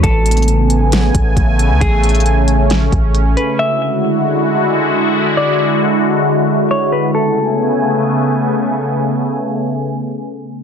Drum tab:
HH |x---xxxxx---x---x---x---x---x---|x---xxxxx---x---x---x---x---x---|--------------------------------|--------------------------------|
SD |----------------o---------------|----------------o---------------|--------------------------------|--------------------------------|
BD |o-------------------o---o-------|o-------------------o-----------|--------------------------------|--------------------------------|

HH |--------------------------------|--------------------------------|
SD |--------------------------------|--------------------------------|
BD |--------------------------------|--------------------------------|